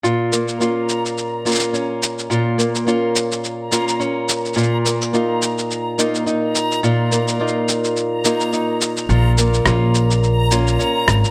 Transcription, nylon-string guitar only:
X:1
M:4/4
L:1/8
Q:"Swing 16ths" 1/4=106
K:Bbm
V:1 name="Nylon-string guitar"
[B,,F] B, [B,DF]3 [B,DF] D2 | [B,,F] B, [B,DF]3 [B,DF] D2 | [B,,F] B, [B,EF]3 [B,EF] E2 | [B,,F] B, [B,EF]3 [B,EF] E2 |
[B,,F] B, [B,DF]3 [B,DF] D2 |]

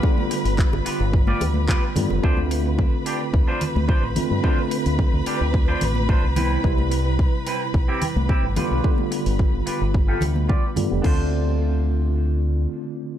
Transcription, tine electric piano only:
X:1
M:4/4
L:1/16
Q:1/4=109
K:Ddor
V:1 name="Tine electric piano"
[D,G,B,F]12- [D,G,B,F]2 [D,G,B,F]2 | [D,A,CF]12- [D,A,CF]2 [D,A,CF]2 | [D,A,CF]12- [D,A,CF]2 [C,G,B,E]2 | [C,G,EB]12- [C,G,EB]2 [D,G,B,F]2 |
[D,G,B,F]12- [D,G,B,F]2 [D,G,B,F] [D,G,B,G] | [D,A,CF]16 |]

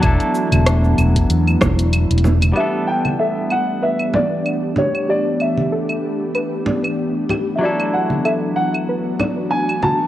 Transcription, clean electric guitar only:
X:1
M:4/4
L:1/8
Q:"Swing 16ths" 1/4=95
K:Edor
V:1 name="Clean electric guitar"
[F,DEA]6- [F,DEA] z | [G,B,DA]8- | [G,B,DA]8 | [F,DEA]8 |]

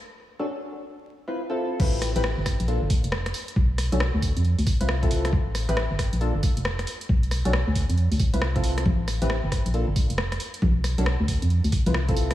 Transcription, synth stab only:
X:1
M:4/4
L:1/16
Q:"Swing 16ths" 1/4=136
K:Ddor
V:1 name="Synth stab"
z3 [^CD^FA] z6 z [=CE=FB] z [CEFA]3 | [CEGB]3 [CEGB] z4 [_B,DFA] z6 z | z3 [^CD^FA] z6 z [=CE=FB] z [CEFA]3 | z3 [CEGB] z4 [_B,DFA] z6 z |
z3 [^CD^FA] z6 z [=CE=FB] z [CEFA]3 | z3 [CEGB] z4 [_B,DFA] z6 z | z3 [^CD^FA] z6 z [=CE=FB] z [CEFA]3 |]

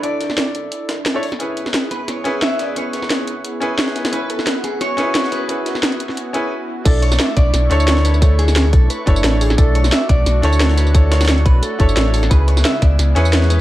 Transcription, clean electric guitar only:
X:1
M:4/4
L:1/8
Q:"Swing 16ths" 1/4=176
K:Bdor
V:1 name="Clean electric guitar"
d6 z2 | z3 B c2 e d | c6 z2 | B A2 G c3 B- |
B6 z2 | A c e d2 c2 B | A G2 A B3 G | A c e d2 c2 B |
A c2 B A3 A | B c e d2 c2 B |]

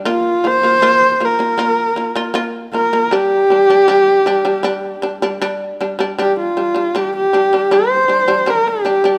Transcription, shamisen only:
X:1
M:4/4
L:1/16
Q:1/4=78
K:none
V:1 name="Shamisen"
[_B,F]2 [B,F] [B,F] [B,F]2 [B,F] [B,F] [B,F]2 [B,F] [B,F] [B,F]2 [B,F] [B,F] | [G,D]2 [G,D] [G,D] [G,D]2 [G,D] [G,D] [G,D]2 [G,D] [G,D] [G,D]2 [G,D] [G,D] | [G,D]2 [G,D] [G,D] [G,D]2 [G,D] [G,D] [G,D]2 [G,D] [G,D] [G,D]2 [G,D] [G,D] |]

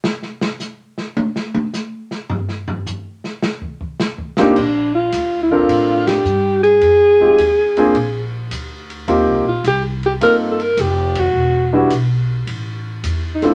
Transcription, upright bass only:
X:1
M:4/4
L:1/8
Q:"Swing" 1/4=106
K:Bb
V:1 name="Upright bass" clef=bass
z8 | z8 | B,,,2 D,,2 A,,2 G,,2 | F,,2 E,,2 B,,,2 D,,2 |
(3E,, C,, B,,, C,,2 G,,,2 F,,,2 | =E,,,2 =B,,,2 A,,,2 =E,,2 |]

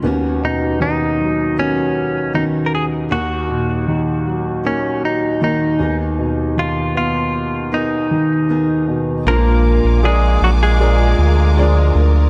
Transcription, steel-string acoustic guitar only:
X:1
M:4/4
L:1/8
Q:1/4=78
K:Bbphr
V:1 name="Steel-string acoustic guitar"
[^D,=B,^C^F]4 [D,B,CF]2 [D,B,CF]2 | [E,B,EG]4 [E,B,EG]2 [E,B,EG] [E,CEA]- | [E,CEA]4 [E,CEA]2 [E,CEA]2 | [B,,F,A,=DF]2 [F,A,DF]2 [F,A,DF]2 [F,A,DF]2 |]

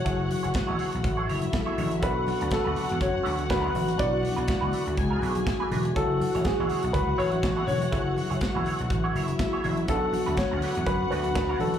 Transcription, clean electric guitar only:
X:1
M:4/4
L:1/16
Q:"Swing 16ths" 1/4=122
K:F#m
V:1 name="Clean electric guitar"
[A,EGc]2 z [A,EGc] z [A,EGc] [A,EGc] z2 [A,EGc] [A,EGc] z2 [A,EGc] [A,EGc]2 | [A,DFB]2 z [A,DFB] z [A,DFB] [A,DFB] z3 [A,DFB]2 z [A,DFB]2 z | [A,DFB]2 z [A,DFB] z [A,DFB] [A,DFB] z2 [A,DFB] [A,DFB] z2 [A,DFB] [A,DFB]2 | [A,EGc]2 z [A,EGc] z [A,EGc] [A,EGc] z3 [A,EGc]2 z [A,EGc]2 z |
[A,EGc]2 z [A,EGc] z [A,EGc] [A,EGc] z2 [A,EGc] [A,EGc] z2 [A,EGc] [A,EGc]2 | [A,DFB]2 z [A,DFB] z [A,DFB] [A,DFB] z3 [A,DFB]2 z [A,DFB]2 z |]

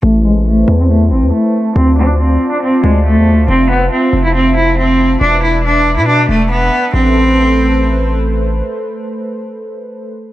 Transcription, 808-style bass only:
X:1
M:4/4
L:1/16
Q:1/4=139
K:Am
V:1 name="808-style bass" clef=bass
A,,,6 E,,4 ^G,,, E,, z4 | D,,6 z4 D,,3 E,,3/2 D,,3/2 | F,,,4 z2 F,,,8- F,,,2 | E,,,6- E,,, B,,3 E,,,4 z2 |
A,,,16 | z16 |]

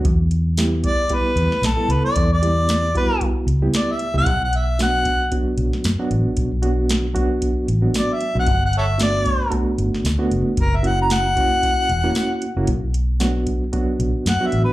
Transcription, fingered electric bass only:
X:1
M:4/4
L:1/16
Q:"Swing 16ths" 1/4=114
K:Bm
V:1 name="Fingered electric bass" clef=bass
E,,8 z2 E,, z B,,, z C,, z | E,,8 z2 C,,2 z3 C,, | B,,,8 z2 B,,, z F,, z A,,, z | B,,,8 z2 A,,,2 z3 B,,, |
G,,,8 z2 G,,, z D,, z F,,, z | F,,,8 z2 E,,,2 z3 F,,, | B,,,8 z2 B,,, z F,, z A,,, z |]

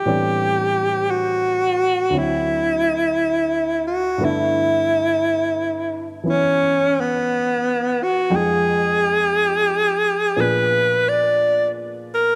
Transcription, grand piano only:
X:1
M:4/4
L:1/8
Q:"Swing" 1/4=58
K:Gphr
V:1 name="Grand piano"
[=A,,=E,G,=B,CD]4 [D,,D,^F,C=E]4 | [G,,D,=A,=B,=E]4 [=E,B,_DE]4 | [F,,F,A,Eg]4 [B,,F,_CDA]4 |]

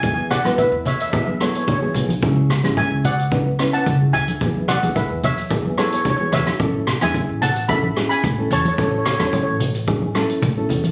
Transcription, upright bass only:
X:1
M:4/4
L:1/16
Q:1/4=110
K:A
V:1 name="Upright bass" clef=bass
E,,3 B,,,2 E,,6- E,, E,2 B,,,2 | C,,3 G,,,2 C,,6- C,, C,2 D,,2 | E,,3 B,,,2 E,,6- E,, E,2 E,,2 | A,,,3 E,,2 A,,,6- A,,, A,,2 E,,2 |
A,,,3 E,,2 A,,,6- A,,, A,,2 E,,2 |]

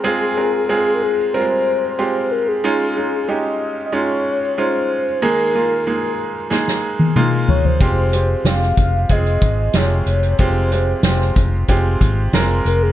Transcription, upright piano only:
X:1
M:4/4
L:1/8
Q:1/4=93
K:Fm
V:1 name="Upright piano"
[A,CFA] [A,CFB] [A,CFA] z [G,A,CFB] z [A,CFG] z | [A,DEF] [A,DEF] [A,DEG] z [A,DEF] z [A,DEF] z | [A,B,EA] [A,B,EF] [A,B,EA] z [A,B,EA] z [A,B,EF] z | [A,CFG] [A,CFG] [A,CFG] z [A,CFA] z [C,A,FG] z |
[A,CFG] [A,CFG] [A,CFG] z [A,CFG] z [A,CFB] z |]
V:2 name="Upright piano" clef=bass
z8 | z8 | E,3 z4 z | z8 |
z8 |]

